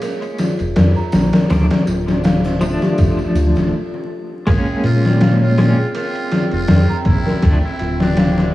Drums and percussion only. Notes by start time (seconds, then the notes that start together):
0.02 ride, tambourine
0.22 ride, tambourine
0.38 snare, ride, tambourine
0.59 ride, tambourine
0.76 snare, ride, tambourine
0.96 tambourine
1.12 snare, ride, tambourine
1.33 snare, ride, tambourine
1.50 snare, ride, tambourine, triangle
1.70 snare, ride, tambourine
1.87 ride, tambourine
2.08 snare, tambourine
2.24 snare, ride, tambourine
2.44 snare, tambourine, triangle
2.61 ride, tambourine
2.82 snare, tambourine
2.98 kick, ride, tambourine
3.19 tambourine
3.35 ride, tambourine, triangle
3.55 snare, tambourine
4.47 kick, ride
4.84 ride
5.05 snare
5.21 snare, ride
5.58 snare, ride
5.95 ride
6.15 ride
6.32 snare, ride
6.51 ride
6.68 snare, ride
7.05 kick, ride
7.26 snare
7.42 kick, ride
7.79 ride
8.00 snare
8.17 snare, ride
8.38 snare